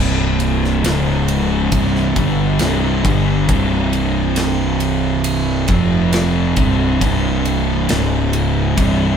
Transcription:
Already playing: C1 C2 G2
0.00 C3
0.40 ride
0.64 snare
0.84 C#1 C#2 G#2 C#3, snare, ride
1.28 ride
1.72 C1 C2 G2 C3, kick, ride
1.95 snare
2.16 G1 G2 D3 G3, kick, ride
2.59 C1 C2 G2 C3, snare, ride
3.05 G1 G2 D3 G3, kick, ride
3.48 C1 C2 G2 C3, kick, ride
3.93 ride
4.36 snare, ride
4.80 ride
5.24 ride
5.68 F1 F2 C3 F3, kick, ride
6.13 snare, ride
6.56 C1 C2 G2 C3, kick, ride
7.01 C1 C2 G2 C3, kick, ride
7.45 ride
7.89 C#1 C#2 G#2 C#3, snare, ride
8.33 ride
8.77 C1 C2 G2 C3, kick, ride

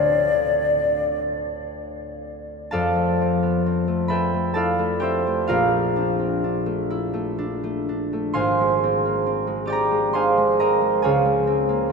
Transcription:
Already playing: D2 A3 C4 F4 A4 D5
2.71 F2 A4 D5 F5 A5
2.96 A3
3.21 C4
3.43 B3
3.66 C4
3.88 A3
4.08 A4 B4 E5 G5 B5
4.34 A3
4.54 E4 A4 D5 F5 A5
4.79 A3
5.00 C4 G4 C5 E5 G5
5.27 A3
5.47 A#1 F4 A#4 D5 F5
5.70 A3
5.96 D4
6.19 C4
6.44 D4
6.66 A3
6.90 E4
7.14 A3
7.38 D4
7.64 A3
7.89 D4
8.13 A3
8.33 G#1 C5 F5 G#5 C6
8.60 G#3
8.83 C4
9.05 A#3
9.26 C4
9.47 G#3
9.65 G4 D5 D6
9.70 G5 A#5
9.91 G#3
10.13 D#4 C5 F5 G#5 C6
10.37 G#3
10.60 C4 A#4 D#5 G5 A#5
10.81 G#3
11.02 C#2 G#4 C#5 F5 G#5
11.25 G#3
11.47 C4
11.69 A#3

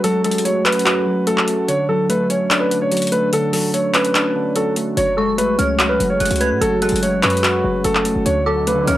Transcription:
Already playing: F#3 G#3 A3 C#4 F#4
0.04 F#3 A4, closed hi-hat
0.24 G#3 A4, closed hi-hat, open hi-hat
0.31 closed hi-hat
0.38 closed hi-hat
0.45 A3 C#5, closed hi-hat
0.65 C#4 B4, clap, closed hi-hat
0.72 closed hi-hat
0.79 closed hi-hat
0.85 F#4, clap, closed hi-hat
1.07 F#3
1.27 A3 A4, closed hi-hat
1.38 clap
1.48 A3, closed hi-hat
1.68 D3 C#5, closed hi-hat
1.89 F#3 A4
2.09 A3 B4, closed hi-hat
2.30 C#4 C#5, closed hi-hat
2.50 D4, clap, closed hi-hat
2.60 B4
2.71 D3, closed hi-hat
2.82 C#5
2.92 F#3, closed hi-hat
2.97 closed hi-hat
3.02 closed hi-hat
3.07 closed hi-hat
3.12 A3 B4, closed hi-hat
3.33 D3 A4, closed hi-hat
3.52 F#3 A4, open hi-hat
3.74 A3 C#5, closed hi-hat
3.94 C#4 B4, clap, closed hi-hat
4.05 closed hi-hat
4.15 D4, clap, closed hi-hat
4.35 D3
4.56 F#3 A4, closed hi-hat
4.76 A3, closed hi-hat
4.97 F#1 F#3 C#5, closed hi-hat
5.17 G#3 A4 C#6
5.38 A1 A3 B4, closed hi-hat
5.58 C#2 C#4 C#5 F6, closed hi-hat
5.79 F#4, clap, closed hi-hat
5.89 B4
5.99 F#1 F#3, closed hi-hat
6.10 C#5
6.20 F#1 G#3 F#6, closed hi-hat
6.26 closed hi-hat
6.31 C#2, closed hi-hat
6.36 closed hi-hat
6.40 A3 B4 G#6, closed hi-hat
6.51 A2
6.61 F#1 F#3 A4, closed hi-hat
6.82 G#3 A4 F#6, closed hi-hat, open hi-hat
6.89 F#1, closed hi-hat
6.96 closed hi-hat
7.02 A3 C#5, closed hi-hat
7.23 F#2 C#4 B4 C#6, clap, closed hi-hat
7.30 closed hi-hat
7.37 closed hi-hat
7.43 F#4, clap, closed hi-hat
7.64 F#1 F#3
7.84 F#1 A3 A4, closed hi-hat
7.95 clap
8.05 F1 A3, closed hi-hat
8.16 F#1
8.26 D2 D3 C#5, closed hi-hat, riser
8.46 F#3 A4 D6
8.67 A3 B4, closed hi-hat
8.87 D2 C#4 C#5 F6, closed hi-hat

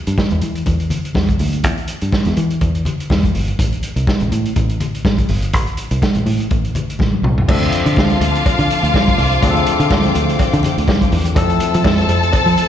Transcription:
0.07 G2, closed hi-hat
0.18 kick, snare, high conga
0.30 E2, closed hi-hat
0.41 E3, closed hi-hat, muted conga
0.55 closed hi-hat
0.66 E2, kick, closed hi-hat, muted conga
0.80 closed hi-hat
0.90 closed hi-hat, low conga
1.05 closed hi-hat
1.14 E2, kick, snare, high conga
1.29 kick, closed hi-hat, high conga
1.39 D2, open hi-hat
1.53 closed hi-hat
1.64 E2, kick, closed hi-hat, muted conga
1.78 closed hi-hat
1.88 closed hi-hat
2.01 G2, closed hi-hat
2.12 kick, snare, high conga
2.25 E2, snare, closed hi-hat
2.37 E3, closed hi-hat, muted conga
2.50 closed hi-hat
2.61 E2, kick, closed hi-hat, muted conga
2.75 closed hi-hat
2.85 closed hi-hat, low conga
3.00 closed hi-hat
3.10 E2, kick, snare, high conga
3.23 kick, closed hi-hat, high conga
3.34 G1, open hi-hat
3.48 closed hi-hat
3.59 A1, kick, closed hi-hat, muted conga
3.73 closed hi-hat
3.83 closed hi-hat, muted conga
3.96 C2, closed hi-hat
4.07 kick, snare, high conga
4.20 A1, closed hi-hat
4.32 A2, closed hi-hat, muted conga
4.46 closed hi-hat
4.56 A1, kick, closed hi-hat, muted conga
4.70 closed hi-hat
4.80 closed hi-hat, low conga
4.95 closed hi-hat
5.05 A1, kick, snare, high conga
5.18 kick, closed hi-hat, high conga
5.29 G1, open hi-hat
5.42 closed hi-hat
5.53 A1, kick, closed hi-hat, muted conga
5.67 closed hi-hat
5.77 closed hi-hat
5.91 C2, closed hi-hat
6.02 kick, snare, high conga
6.15 A1, closed hi-hat
6.26 A2, open hi-hat, muted conga
6.40 closed hi-hat
6.51 A1, kick, closed hi-hat, muted conga
6.65 closed hi-hat
6.75 closed hi-hat, low conga
6.90 closed hi-hat
6.99 A1, kick, snare, high conga
7.13 high conga
7.23 C2, mid tom
7.38 floor tom
7.48 D2 F3 A3 C4 D4 F4 A4 C5 F5 A5 D6, kick, crash, cowbell, muted conga
7.62 closed hi-hat
7.73 closed hi-hat
7.86 D3, closed hi-hat
7.96 D2, kick, snare, cowbell, high conga
8.10 snare, closed hi-hat
8.21 D2, closed hi-hat, muted conga
8.35 closed hi-hat
8.46 muted fingered electric bass stroke, kick, closed hi-hat, cowbell, muted conga
8.59 D3, closed hi-hat
8.70 closed hi-hat
8.83 D2, closed hi-hat
8.94 kick, snare, cowbell, high conga
9.08 kick, closed hi-hat, high conga
9.18 C2, open hi-hat
9.32 closed hi-hat
9.41 D2 F3 A3 C4 D4 G#4 G5, kick, closed hi-hat, cowbell, muted conga
9.51 A4
9.56 closed hi-hat
9.66 closed hi-hat, muted conga
9.80 D3, closed hi-hat
9.90 D2, kick, snare, cowbell, high conga
10.03 snare, closed hi-hat
10.15 D2, closed hi-hat, muted conga
10.29 closed hi-hat
10.39 muted fingered electric bass stroke, kick, closed hi-hat, cowbell, muted conga
10.53 D3, closed hi-hat
10.63 closed hi-hat, low conga
10.78 D2, closed hi-hat
10.88 kick, snare, cowbell, high conga
11.01 kick, closed hi-hat, high conga
11.12 E2, open hi-hat
11.25 closed hi-hat
11.35 F2 F3 A3 C4 E4 A4 C5 A5 E6, kick, closed hi-hat, cowbell, muted conga
11.50 closed hi-hat
11.60 closed hi-hat, muted conga
11.74 F3, closed hi-hat
11.84 F2, kick, snare, cowbell, high conga
11.98 snare, closed hi-hat
12.09 F2, closed hi-hat, muted conga
12.23 closed hi-hat
12.32 muted fingered electric bass stroke, kick, closed hi-hat, cowbell, muted conga
12.46 F3, closed hi-hat
12.57 closed hi-hat

